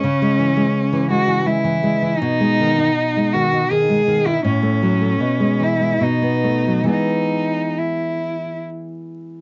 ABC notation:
X:1
M:3/4
L:1/16
Q:1/4=78
K:E
V:1 name="Cello"
C6 F2 E4 | D6 F2 G3 E | C6 E2 D4 | D4 E4 z4 |]
V:2 name="Nylon-string guitar" clef=bass
C, G, E, G,2 E, G, E, G, E, G, E, | B,, G, D, D2 G, D, D D, G, D, D | A,, A, F, A, B,, G, E, G, B,, B, A, F, | [E,G,B,]12 |]